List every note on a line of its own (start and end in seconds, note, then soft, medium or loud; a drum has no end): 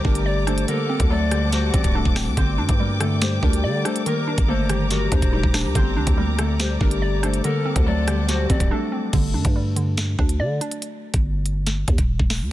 0.00 0.67 D3 medium
0.00 0.47 G3 medium
0.00 0.73 G3 medium
0.00 0.48 A3 medium
0.00 2.00 C4 medium
0.00 1.31 G4 medium
0.00 0.47 A4 medium
0.00 0.64 A#4 medium
0.00 0.97 C5 loud
0.00 0.66 D5 medium
0.00 0.64 A#5 medium
0.00 9.09 D6 medium
0.05 0.66 G1 loud
0.05 0.46 D4 medium
0.05 0.25 A#4 medium
0.05 kick loud
0.15 closed hi-hat medium
0.26 0.68 D5 medium
0.26 0.46 D5 medium
0.47 0.74 A3 medium
0.47 0.68 D4 medium
0.47 0.74 A4 medium
0.47 0.67 C5 medium
0.47 cross-stick medium
0.47 closed hi-hat medium
0.58 closed hi-hat medium
0.68 1.31 D3 medium
0.68 1.16 A#3 medium
0.68 1.08 A4 loud
0.68 1.16 A#4 loud
0.68 2.35 C5 medium
0.68 2.35 F#5 medium
0.68 2.35 A5 medium
0.68 closed hi-hat medium
0.89 1.73 C4 loud
1.00 1.71 D2 loud
1.00 kick loud
1.00 closed hi-hat medium
1.10 2.16 F#3 medium
1.10 1.96 A3 medium
1.10 1.95 A4 medium
1.10 1.50 D5 medium
1.31 2.36 D3 medium
1.31 2.42 G3 medium
1.31 1.59 G4 medium
1.31 cross-stick loud
1.31 closed hi-hat medium
1.52 2.42 F#3 medium
1.52 3.28 F#4 medium
1.52 1.73 C5 medium
1.52 snare medium
1.52 closed hi-hat medium
1.74 1.84 A1 loud
1.74 2.15 C4 medium
1.74 1.94 D5 medium
1.74 kick loud
1.74 closed hi-hat medium
1.84 2.05 C1 loud
1.84 kick loud
1.84 closed hi-hat medium
1.95 2.85 A3 medium
1.95 2.37 D4 loud
1.95 2.85 A4 medium
2.05 2.28 D1 loud
2.05 kick loud
2.16 2.37 C4 medium
2.16 finger snap medium
2.16 cross-stick medium
2.16 snare loud
2.16 open hi-hat medium
2.27 2.37 D2 loud
2.37 2.60 G1 loud
2.37 2.99 D3 loud
2.37 5.38 C4 medium
2.37 7.40 A#4 medium
2.37 4.35 C5 loud
2.37 4.04 D5 medium
2.37 4.04 G5 medium
2.37 kick loud
2.37 closed hi-hat medium
2.58 2.68 G2 loud
2.58 3.41 D4 medium
2.69 3.40 G2 loud
2.69 kick loud
2.69 closed hi-hat medium
2.79 3.85 G3 medium
2.79 3.06 A#3 medium
2.79 3.06 A#4 medium
3.00 4.06 D3 medium
3.00 3.86 A3 medium
3.00 3.85 A4 medium
3.00 cross-stick loud
3.00 closed hi-hat medium
3.21 4.11 G3 medium
3.21 4.69 G4 medium
3.21 3.42 C5 loud
3.21 finger snap medium
3.21 snare loud
3.21 closed hi-hat medium
3.43 3.65 D2 loud
3.43 3.84 D4 medium
3.43 3.63 A#4 medium
3.43 kick loud
3.53 closed hi-hat medium
3.64 3.84 D3 loud
3.64 4.06 D5 loud
3.64 3.84 D5 medium
3.85 4.12 A3 medium
3.85 4.06 D4 medium
3.85 4.12 A4 medium
3.85 4.05 C5 medium
3.85 cross-stick medium
3.85 closed hi-hat medium
3.96 closed hi-hat medium
4.06 4.68 D#3 loud
4.06 4.54 A#3 medium
4.06 4.46 A#4 loud
4.06 4.54 A#4 loud
4.06 5.73 D5 medium
4.06 7.41 A#5 medium
4.06 closed hi-hat medium
4.27 5.10 D4 medium
4.38 5.09 G1 loud
4.38 kick loud
4.38 closed hi-hat medium
4.48 6.23 A3 medium
4.48 5.54 A#3 medium
4.48 6.23 A4 medium
4.48 4.88 C5 medium
4.69 5.75 D#3 medium
4.69 5.33 G3 medium
4.69 4.97 G4 medium
4.69 cross-stick loud
4.69 closed hi-hat medium
4.91 5.80 F#3 medium
4.91 5.39 F#4 medium
4.91 5.11 A#4 medium
4.91 snare medium
4.91 closed hi-hat medium
5.12 5.22 D#2 loud
5.12 5.53 D4 medium
5.12 5.71 C5 medium
5.12 kick loud
5.12 closed hi-hat medium
5.22 5.43 D#1 loud
5.22 kick loud
5.22 closed hi-hat medium
5.33 5.80 G3 medium
5.33 5.75 D#4 medium
5.33 6.59 G4 medium
5.43 5.66 D#1 loud
5.43 kick loud
5.54 5.75 D4 medium
5.54 finger snap medium
5.54 cross-stick medium
5.54 snare loud
5.54 open hi-hat medium
5.65 5.75 D#2 loud
5.75 5.98 G1 loud
5.75 6.37 D3 medium
5.75 8.76 C4 loud
5.75 7.74 C5 loud
5.75 7.42 D5 medium
5.75 kick loud
5.75 closed hi-hat medium
5.96 6.06 D2 loud
5.96 6.80 D4 medium
6.07 6.78 D2 loud
6.07 kick loud
6.07 closed hi-hat medium
6.17 7.23 G3 medium
6.17 6.45 A#3 medium
6.17 6.45 A#4 medium
6.38 7.43 D3 medium
6.38 7.24 A3 medium
6.38 7.23 A4 medium
6.38 cross-stick loud
6.38 closed hi-hat medium
6.59 7.49 G3 medium
6.59 8.07 G4 medium
6.59 6.80 C5 medium
6.59 finger snap loud
6.59 snare loud
6.59 closed hi-hat medium
6.81 7.42 G1 loud
6.81 7.22 D4 medium
6.81 7.01 A#4 medium
6.81 kick loud
6.91 closed hi-hat medium
7.02 7.44 D5 medium
7.02 7.22 D5 medium
7.23 7.50 A3 medium
7.23 7.44 D4 medium
7.23 7.50 A4 medium
7.23 7.43 C5 medium
7.23 cross-stick medium
7.23 closed hi-hat medium
7.34 closed hi-hat medium
7.44 8.06 D3 medium
7.44 7.92 A#3 medium
7.44 7.84 A4 loud
7.44 7.92 A#4 loud
7.44 9.12 C5 medium
7.44 9.12 F#5 medium
7.44 9.12 A5 medium
7.44 closed hi-hat medium
7.65 8.49 C4 medium
7.76 8.47 D2 loud
7.76 kick loud
7.76 closed hi-hat medium
7.86 8.92 F#3 medium
7.86 8.72 A3 medium
7.86 8.71 A4 medium
7.86 8.26 D5 medium
8.07 9.12 D3 medium
8.07 9.18 G3 medium
8.07 8.35 G4 medium
8.07 cross-stick loud
8.07 closed hi-hat medium
8.29 9.18 F#3 medium
8.29 10.73 F#4 medium
8.29 8.49 C5 medium
8.29 snare medium
8.29 closed hi-hat medium
8.50 8.60 A1 loud
8.50 8.91 C4 medium
8.50 8.70 D5 medium
8.50 kick loud
8.50 closed hi-hat medium
8.60 8.71 C1 loud
8.60 kick loud
8.60 closed hi-hat medium
8.71 12.05 A3 medium
8.71 9.13 D4 loud
8.71 10.91 A4 loud
8.92 9.13 C4 medium
9.13 9.36 G1 loud
9.13 9.75 D3 loud
9.13 kick loud
9.13 closed hi-hat medium
9.13 crash loud
9.34 9.44 G2 loud
9.34 10.17 D4 medium
9.45 10.16 G2 medium
9.45 kick loud
9.45 closed hi-hat medium
9.56 10.61 G3 medium
9.76 10.82 D3 medium
9.76 closed hi-hat medium
9.97 finger snap medium
9.97 snare loud
9.97 closed hi-hat medium
10.19 10.41 D2 loud
10.19 10.60 D4 medium
10.19 kick medium
10.29 closed hi-hat medium
10.40 10.60 D3 loud
10.40 10.82 D5 loud
10.61 10.82 D4 medium
10.61 closed hi-hat medium
10.71 closed hi-hat medium
10.82 closed hi-hat medium
11.14 11.85 G1 loud
11.14 kick loud
11.14 closed hi-hat medium
11.46 closed hi-hat medium
11.67 snare medium
11.67 closed hi-hat medium
11.88 11.98 D#2 loud
11.88 kick medium
11.88 closed hi-hat medium
11.98 12.19 D#1 loud
11.98 kick loud
11.98 closed hi-hat medium
12.19 12.42 D#1 loud
12.19 kick medium
12.30 finger snap medium
12.30 snare loud
12.30 open hi-hat medium
12.41 12.51 D#2 medium